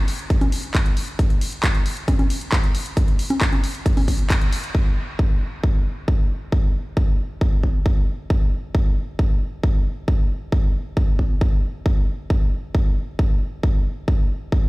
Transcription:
0.08 open hi-hat
0.19 closed hi-hat
0.30 kick, closed hi-hat
0.41 closed hi-hat, high conga
0.52 open hi-hat
0.63 closed hi-hat
0.75 kick, clap, closed hi-hat
0.86 closed hi-hat
0.97 open hi-hat
1.08 closed hi-hat
1.19 kick, closed hi-hat
1.30 closed hi-hat
1.41 open hi-hat
1.52 closed hi-hat
1.64 kick, clap, closed hi-hat
1.75 closed hi-hat
1.86 open hi-hat
1.97 closed hi-hat
2.08 kick, closed hi-hat, high conga
2.19 closed hi-hat, high conga
2.30 open hi-hat
2.41 closed hi-hat
2.52 kick, clap, closed hi-hat
2.64 closed hi-hat
2.75 open hi-hat
2.86 closed hi-hat
2.97 kick, closed hi-hat
3.08 closed hi-hat
3.19 open hi-hat
3.30 closed hi-hat, high conga
3.41 kick, clap, closed hi-hat
3.53 closed hi-hat, high conga
3.64 open hi-hat
3.75 closed hi-hat
3.86 kick, closed hi-hat
3.97 open hi-hat, high conga
4.08 kick, open hi-hat
4.19 closed hi-hat
4.30 kick, clap, closed hi-hat
4.41 closed hi-hat
4.53 open hi-hat
4.64 closed hi-hat
4.75 kick, crash
5.19 kick
5.64 kick
6.08 kick
6.52 kick
6.97 kick
7.41 kick
7.63 kick
7.86 kick
8.30 kick
8.75 kick
9.19 kick
9.63 kick
10.08 kick
10.52 kick
10.97 kick
11.19 kick
11.41 kick
11.86 kick
12.30 kick
12.75 kick
13.19 kick
13.63 kick
14.08 kick
14.52 kick

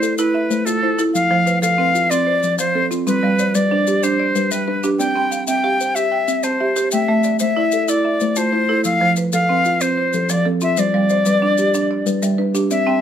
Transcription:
Already playing: E4 C5 D5
0.02 A4, maracas
0.18 E4 B4, maracas
0.34 E5
0.50 A3 C5, maracas
0.65 A3 F4 A4, maracas
0.83 E4 C5
0.99 E4 A4, maracas
1.14 F3 F5, maracas
1.31 F3 C5 F5
1.46 B4 C5, maracas
1.62 F3 A4 F5, maracas
1.78 C4 B4
1.95 F4, maracas
2.10 C4 D5, maracas
2.27 C5
2.43 F3, maracas
2.59 F3 C5 D5, maracas
2.75 C4 A4
2.91 C4 F4, maracas
3.07 G3 C4 B4, maracas
3.23 G3 D5 F5
3.39 C5 D5, maracas
3.55 G3 B4 D5, maracas
3.71 D4 C5
3.87 G4, maracas
4.03 D4 C5, maracas
4.20 D5
4.35 G3 B4, maracas
4.51 G3 B4 E5, maracas
4.68 D4 B4
4.83 D4 G4, maracas
4.99 C4 D5 G5, maracas
5.16 C4 G5 B5
5.31 F5 G5, maracas
5.47 C4 E5 G5, maracas
5.64 G4 F5
5.80 C5, maracas
5.95 G4 E5, maracas
6.12 G5
6.28 C4 E5, maracas
6.43 C4 C5 A5, maracas
6.60 G4 E5
6.76 G4 C5, maracas
6.91 A3 E5 G5, maracas
7.08 A3 E5 G5
7.23 D5, maracas
7.39 A3 C5 E5, maracas
7.57 E4 D5
7.72 A4, maracas
7.88 E4 D5, maracas
8.05 E5
8.20 A3 C5, maracas
8.36 A3 F4 C5, maracas
8.52 E4 C5
8.69 E4 A4
8.84 F3 F5 E6, maracas
9.01 F3 C5 F5
9.16 B4, maracas
9.33 F3 A4 F5, maracas
9.49 C4 B4
9.65 F4, maracas
9.81 C4 C5, maracas
9.97 C5
10.13 F3 A4, maracas
10.29 F3 D5, maracas
10.45 C4 A4
10.61 C4 F4 E5, maracas
10.77 G3 C5 D5, maracas
10.94 G3 D5 F5
11.09 C5 D5, maracas
11.25 G3 B4, maracas
11.42 D4
11.58 G4, maracas
11.74 D4, maracas
11.91 D5
12.06 G3 B4, maracas
12.22 G3 E5, maracas
12.38 D4 B4
12.55 D4 G4, maracas
12.71 C4 D5 E5, maracas
12.87 C4 G5 A5

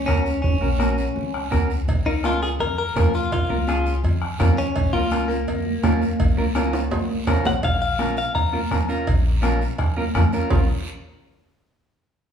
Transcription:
0.06 C#2 C#4 F#4 A#4, bombo low, bombo rim, high conga, short guiro
0.26 short guiro
0.42 F#1 C#4, bombo low, high conga, low conga, long guiro
0.61 A#1 C#4 F#4 A#4, high conga
0.79 C#4 F#4 A#4, bombo rim, high conga, short guiro
0.98 short guiro
1.16 C#2, high conga, low conga, long guiro
1.34 bombo rim
1.51 C#2 C#4 F#4 A#4, bombo low, bombo rim, high conga, short guiro
1.70 short guiro
1.88 A#1, bombo low, cowbell, high conga, long guiro
2.06 C#2 C#4 D#4 F4 A#4
2.23 C#4 F4 A#4, bombo rim, cowbell, high conga, short guiro
2.42 G#4, short guiro
2.60 F2 A#4, cowbell, high conga, low conga, long guiro
2.78 A#4
2.96 F2 C#4 F4 A#4, bombo low, bombo rim, cowbell, high conga, low timbale, short guiro
3.14 F4, short guiro
3.32 A#1 F4, bombo low, cowbell, high conga, low conga, long guiro
3.49 C#2 C#4 F4 A#4, high conga
3.67 C#4 F4 G#4, bombo rim, cowbell, high conga, short guiro
3.86 short guiro
4.03 F2, cowbell, high conga, low conga, long guiro
4.22 bombo rim
4.39 F2 C#4 F4 A#4, bombo low, bombo rim, cowbell, high conga, low conga, low timbale, short guiro
4.58 C#4, short guiro
4.76 A#1, bombo low, cowbell, high conga, long guiro
4.93 C#2 C#4 F4 A#4, high conga
5.11 C#4 F4 A#4, bombo rim, cowbell, high conga, short guiro
5.28 A#3, short guiro
5.47 F2, cowbell, high conga, low conga, long guiro
5.66 high conga
5.83 F2 C#4 F4 A#4, bombo low, bombo rim, cowbell, high conga, low timbale, short guiro
6.02 short guiro
6.19 A#1, bombo low, cowbell, high conga, long guiro
6.37 C#2 C#4 F4 A#4, high conga
6.55 C#4 F4 A#4, bombo rim, cowbell, high conga, high timbale, short guiro
6.73 high timbale, short guiro
6.91 F2, cowbell, high conga, low timbale, long guiro
7.09 C#2
7.27 C2 C#4 F4 A#4, bombo low, bombo rim, cowbell, low conga, low timbale, short guiro
7.45 A#1 F#5, low conga, low timbale, short guiro
7.63 A#1 F5, bombo low, cowbell, high conga, long guiro
7.82 F5
7.99 C#4 F4 A#4, bombo rim, high conga, short guiro
8.17 F5, short guiro
8.35 F2 A#5, bombo low, cowbell, long guiro
8.53 C#4 F4 A#4, high conga
8.71 F2 C#4 F4 A#4, bombo low, bombo rim, high conga, short guiro
8.89 C#4 F4 A#4, short guiro
9.07 A#1, bombo low, cowbell, long guiro
9.42 C#4 F4 A#4, bombo rim, high conga, short guiro
9.61 short guiro
9.78 F2, bombo low, bombo rim, cowbell, high conga, long guiro
9.97 C#4 F4 A#4, high conga
10.15 F2 C#4 F4 A#4, bombo low, bombo rim, high conga, low conga, short guiro
10.32 C#4 F4 A#4, short guiro
10.50 A#1 C#4 F4 A#4, bombo low, low conga, low timbale, long guiro

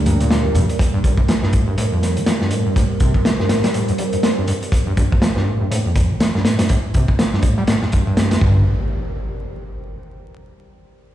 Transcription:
Already playing: D2 G3 G4 A#4 D5
0.06 G2, closed hi-hat, high conga, low conga
0.20 A#2, closed hi-hat
0.31 snare, closed hi-hat
0.45 G1
0.55 F1 G2, closed hi-hat, high conga, low conga
0.69 closed hi-hat
0.79 C5, kick, closed hi-hat
0.94 G2
1.04 G2, kick, closed hi-hat
1.17 C3, kick
1.28 F3, snare, closed hi-hat
1.43 G2, snare
1.53 A2, kick, closed hi-hat
1.67 G2
1.78 A2, closed hi-hat
1.92 F2
2.02 snare, closed hi-hat
2.17 G3, closed hi-hat
2.26 F3, snare, closed hi-hat
2.41 G2, snare
2.51 A2, closed hi-hat
2.66 G2
2.76 A2, kick, closed hi-hat
3.00 C3, kick, closed hi-hat
3.14 kick
3.25 F3, snare, closed hi-hat
3.40 G2, snare
3.49 A2, snare, closed hi-hat
3.64 G3, snare, closed hi-hat
3.74 A2, closed hi-hat
3.88 G2, closed hi-hat
3.98 G3, closed hi-hat
4.13 G2, closed hi-hat
4.23 snare, closed hi-hat
4.38 G2
4.48 G2, closed hi-hat
4.62 closed hi-hat
4.72 kick, closed hi-hat
4.87 G2
4.97 G2, kick, closed hi-hat
5.12 C3, kick
5.22 F3, snare, closed hi-hat
5.36 G2, snare
5.47 A2
5.60 G2
5.71 A2, closed hi-hat
5.85 F2
5.96 kick, closed hi-hat
6.10 G3
6.20 F3, snare, closed hi-hat
6.35 G2, snare
6.45 A2, snare, closed hi-hat
6.59 G2, snare, closed hi-hat
6.69 A2, kick, closed hi-hat
6.94 C3, kick, closed hi-hat
7.08 kick
7.19 F3, snare, closed hi-hat
7.33 G2, snare
7.42 A2, kick, closed hi-hat
7.58 G3
7.67 A2, snare, closed hi-hat
7.82 G2, snare
7.92 G2, kick, closed hi-hat
8.07 G2
8.17 snare, closed hi-hat
8.31 F2, snare, closed hi-hat
8.41 G1 G2, kick, impact

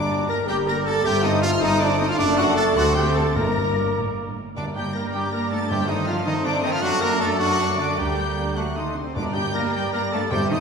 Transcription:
Already playing: G1 G2 G3 D4 D5 A#5 D6
0.11 A#3 G4
0.27 A#3 G4 A#4 A#5 A#6
0.47 G1 G2 G3 A#3 G4 D5 G5 A#5 G6
0.66 A#3 G4 A#4 A#5 A#6
0.85 A#3 G4 A4 A5 A6
1.04 G1 G2 A3 C4 G4 A4 C5 G5 A5 G6
1.23 C4 D#4 A4 D#5 D#6
1.42 C4 F4 A4 F5 F6
1.61 G1 G2 C4 D#4 A4 D#5 D#6
1.79 C4 D4 A4 D5 D6
1.99 C4 D#4 A4 D#5 D#6
2.09 F4 F5 F6
2.18 F#1 F#2 A3 D4 A4 D5 A5 D6
2.37 F#4 F#5 F#6
2.56 A4 A5 A6
2.76 D2 A3 C4 F#4 A4 D5 F#5 C6 F#6
2.95 G4 G5 G6
3.15 A4 A5 A6
3.35 G1 G2 A#3 A#4 D5 A#5 A#6
3.96 A2
4.17 G2
4.36 A2
4.56 G2 D3 G3 A#3 D4 A#4 D5 A#5 D6
4.75 G3 G4 G5 G6
4.95 A#3 D4 A#4 A#5 A#6
5.13 G3 D4 G4 G5 G6
5.32 A#3 A#4 A#5 A#6
5.51 A3 A#3 D4 A4 A5 A6
5.69 G2 G3 A3 G4 A4 C5 G5 A5 G6
5.88 D#3 D#4 D#5 D#6
6.06 F3 A3 C4 F4 F5 F6
6.25 D#3 C4 D#4 D#5 D#6
6.44 D3 D4 D5 D6
6.62 D#3 A3 C4 D#4 D#5 D#6
6.72 F3 F4 F5 F6
6.82 F#2 F#3 D4 F#4 D5 F#5 F#6
7.00 A#3 A#4 A#5 A#6
7.19 A3 D4 A4 A5 A6
7.38 F#3 F#4 F#5 F#6
7.77 D3 A3 D4 D5 D6
7.97 D2 G3 D4 G4 A#4 G5 A#5 G6
8.37 A#3 D4
8.57 F#3 A3 F#4 A4 F#5 A5 F#6
8.76 D#3 D#4 D#5 C6 D#6
8.95 C3 A3 C4 D4 C5 C6 D6
9.15 G2 D3 G3 A#3 D4 A#4 D5 A#5 D6
9.34 G3 G4 G5 G6
9.54 A#3 D4 A#4 A#5 A#6
9.73 G3 G4 D5 G5 G6
9.92 A#3 A#4 A#5 A#6
10.12 A3 A#3 D4 A4 A5 A6
10.31 G2 G3 A3 C4 G4 C5 G5 A5 G6
10.50 D#3 D#4 D#5 D#6

